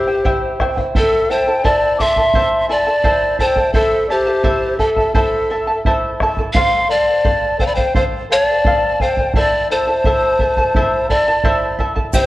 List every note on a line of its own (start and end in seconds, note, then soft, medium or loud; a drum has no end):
0.00 0.57 G4 medium
0.00 0.56 C5 medium
0.07 0.24 E4 soft
0.07 0.24 C5 soft
0.07 0.24 G5 soft
0.25 0.59 E4 medium
0.25 0.60 G4 medium
0.25 0.60 C5 medium
0.25 0.58 E5 medium
0.25 0.60 G5 medium
0.25 bombo low medium
0.60 0.78 E4 medium
0.60 0.76 C5 medium
0.60 0.77 E5 medium
0.60 0.76 G5 medium
0.60 bombo rim soft
0.60 bombo low soft
0.77 0.95 E4 soft
0.77 0.94 C5 soft
0.77 0.95 G5 soft
0.77 bombo low soft
0.95 1.29 E4 medium
0.95 1.30 A4 medium
0.95 1.32 A4 medium
0.95 1.30 C5 medium
0.95 1.32 E5 medium
0.95 1.29 E5 medium
0.95 1.30 A5 medium
0.95 bombo low medium
1.30 1.47 E4 medium
1.30 1.47 A4 medium
1.30 1.66 C5 medium
1.30 1.48 E5 soft
1.30 1.67 G5 medium
1.30 1.47 A5 medium
1.48 1.64 E4 soft
1.48 1.64 A4 soft
1.48 1.64 A5 soft
1.64 1.99 E4 medium
1.64 1.99 A4 medium
1.64 2.00 C5 medium
1.64 1.99 D5 medium
1.64 1.99 E5 medium
1.64 2.00 A5 medium
1.64 1.97 A5 medium
1.64 bombo low medium
1.98 2.18 E4 soft
1.98 2.18 A4 medium
1.98 2.18 E5 medium
1.98 2.66 E5 loud
1.98 2.16 A5 medium
1.98 2.65 C6 medium
1.98 2.03 D6 medium
1.98 bombo low soft
2.16 2.34 E4 soft
2.16 2.35 A4 soft
2.16 2.35 A5 medium
2.16 bombo low soft
2.34 2.68 E4 medium
2.34 2.68 A4 medium
2.34 2.70 C5 medium
2.34 2.68 E5 medium
2.34 2.69 A5 medium
2.34 bombo low medium
2.68 2.87 E4 medium
2.68 2.86 A4 medium
2.68 3.37 D5 loud
2.68 2.87 E5 medium
2.68 3.35 A5 medium
2.68 2.86 A5 medium
2.87 3.04 E4 soft
2.87 3.04 A4 soft
2.87 3.04 A5 medium
3.04 3.38 E4 medium
3.04 3.39 A4 medium
3.04 3.40 C5 medium
3.04 3.38 E5 medium
3.04 3.39 A5 medium
3.04 bombo low medium
3.39 3.57 E4 medium
3.39 3.56 A4 medium
3.39 3.73 C5 medium
3.39 3.57 E5 medium
3.39 3.72 G5 medium
3.39 3.44 A5 medium
3.39 3.56 A5 medium
3.39 bombo low soft
3.56 3.74 E4 soft
3.56 3.74 A4 soft
3.56 3.75 A5 soft
3.56 bombo low soft
3.74 4.09 E4 medium
3.74 4.07 A4 medium
3.74 4.09 A4 medium
3.74 4.10 C5 medium
3.74 4.07 E5 medium
3.74 4.09 E5 medium
3.74 4.09 A5 medium
3.74 bombo low medium
4.07 4.27 E4 medium
4.07 4.77 G4 medium
4.07 4.26 A4 medium
4.07 4.13 D5 medium
4.07 4.27 E5 soft
4.07 4.25 A5 medium
4.12 4.75 C5 medium
4.26 4.43 E4 soft
4.26 4.43 A4 soft
4.26 4.43 A5 soft
4.44 4.78 E4 medium
4.44 4.78 A4 medium
4.44 4.79 C5 medium
4.44 4.78 E5 medium
4.44 4.79 A5 medium
4.44 bombo low medium
4.78 4.97 E4 soft
4.78 4.96 A4 medium
4.78 5.13 A4 medium
4.78 5.12 E5 medium
4.78 4.97 E5 soft
4.78 4.95 A5 medium
4.78 bombo low soft
4.96 5.13 E4 soft
4.96 5.14 A4 soft
4.96 5.14 A5 soft
4.96 bombo low soft
5.14 5.50 E4 medium
5.14 5.81 A4 medium
5.14 5.50 A4 medium
5.14 5.50 C5 medium
5.14 5.80 E5 medium
5.14 5.49 E5 medium
5.14 5.50 A5 medium
5.14 bombo low medium
5.50 5.68 E4 medium
5.50 5.67 A4 medium
5.50 5.68 E5 soft
5.50 5.66 A5 medium
5.67 5.85 E4 soft
5.67 5.85 A4 soft
5.67 5.85 A5 soft
5.85 6.20 E4 medium
5.85 6.21 A4 medium
5.85 6.20 C5 medium
5.85 6.20 E5 medium
5.85 6.21 A5 medium
5.85 bombo low medium
6.20 6.38 E4 medium
6.20 6.39 A4 medium
6.20 6.38 E5 medium
6.20 6.37 A5 medium
6.20 bombo rim soft
6.20 bombo low soft
6.37 6.56 E4 soft
6.37 6.55 A4 soft
6.37 6.56 A5 soft
6.37 bombo low soft
6.53 6.88 A4 medium
6.53 6.89 C5 medium
6.53 6.92 F5 loud
6.53 6.91 F5 medium
6.53 6.91 C6 medium
6.53 bombo low medium
6.89 7.07 A4 medium
6.89 7.07 C5 medium
6.89 7.61 D5 medium
6.89 7.06 F5 medium
6.89 7.62 A5 medium
7.08 7.24 C5 soft
7.08 7.24 F5 soft
7.24 7.58 A4 medium
7.24 7.59 C5 medium
7.24 7.60 F5 medium
7.24 bombo low medium
7.59 7.77 A4 medium
7.59 7.69 C5 medium
7.59 7.76 C5 medium
7.59 7.75 F5 medium
7.59 7.68 G5 medium
7.59 bombo low medium
7.66 7.77 D5 medium
7.66 7.76 B5 medium
7.74 7.95 C5 medium
7.74 7.94 F5 soft
7.74 7.95 G5 medium
7.74 bombo low soft
7.78 7.94 C5 soft
7.95 8.29 A4 medium
7.95 8.30 C5 medium
7.95 8.04 C5 medium
7.95 8.04 F5 medium
7.95 8.30 F5 medium
7.95 bombo low medium
8.30 8.48 A4 soft
8.30 8.48 C5 medium
8.30 8.46 C#5 loud
8.30 8.47 F5 medium
8.30 9.02 A5 medium
8.46 8.65 C5 soft
8.46 9.03 D5 loud
8.46 8.65 F5 soft
8.64 8.99 A4 medium
8.64 9.00 C5 medium
8.64 9.01 F5 medium
8.64 bombo low medium
9.00 9.18 A4 medium
9.00 9.18 C5 medium
9.00 9.35 C5 medium
9.00 9.17 F5 medium
9.00 9.35 G5 medium
9.00 bombo low medium
9.17 9.34 C5 soft
9.17 9.35 F5 soft
9.17 bombo low medium
9.34 9.70 E4 medium
9.34 9.71 A4 medium
9.34 9.70 C5 medium
9.34 9.68 D5 loud
9.34 9.69 E5 medium
9.34 9.68 A5 medium
9.34 9.70 A5 medium
9.34 bombo low medium
9.70 9.88 E4 medium
9.70 9.87 A4 medium
9.70 11.06 C5 medium
9.70 9.88 E5 soft
9.70 11.06 A5 medium
9.70 9.86 A5 medium
9.87 10.05 E4 soft
9.87 10.05 A4 soft
9.87 10.05 A5 soft
10.04 10.39 E4 medium
10.04 10.40 A4 medium
10.04 10.40 C5 medium
10.04 10.39 E5 medium
10.04 10.40 A5 medium
10.04 bombo low medium
10.39 10.58 E4 medium
10.39 10.58 A4 medium
10.39 10.57 E5 medium
10.39 10.57 A5 medium
10.39 bombo low medium
10.57 10.74 E4 soft
10.57 10.75 A4 medium
10.57 10.75 A5 medium
10.57 bombo low soft
10.74 11.09 E4 medium
10.74 11.09 A4 medium
10.74 11.10 C5 medium
10.74 11.09 E5 medium
10.74 11.10 A5 medium
10.74 bombo low medium
11.08 11.27 E4 medium
11.08 11.27 A4 medium
11.08 11.75 D5 loud
11.08 11.27 E5 medium
11.08 11.75 A5 medium
11.08 11.27 A5 medium
11.08 bombo low soft
11.28 11.44 E4 soft
11.28 11.44 A4 soft
11.28 11.44 A5 medium
11.44 11.79 E4 medium
11.44 11.79 A4 medium
11.44 11.79 C5 medium
11.44 11.78 E5 medium
11.44 11.79 A5 medium
11.44 bombo low medium
11.79 11.96 E4 medium
11.79 11.95 A4 medium
11.79 11.97 E5 medium
11.79 11.95 A5 medium
11.79 bombo low soft
11.96 12.13 E4 soft
11.96 12.14 A4 soft
11.96 12.14 A5 medium
11.96 bombo low soft
12.13 12.26 E4 medium
12.13 12.26 G4 medium
12.13 12.26 C5 medium
12.13 12.26 C5 loud
12.13 12.26 E5 medium
12.13 12.26 G5 medium
12.13 bombo low medium
12.13 shaker medium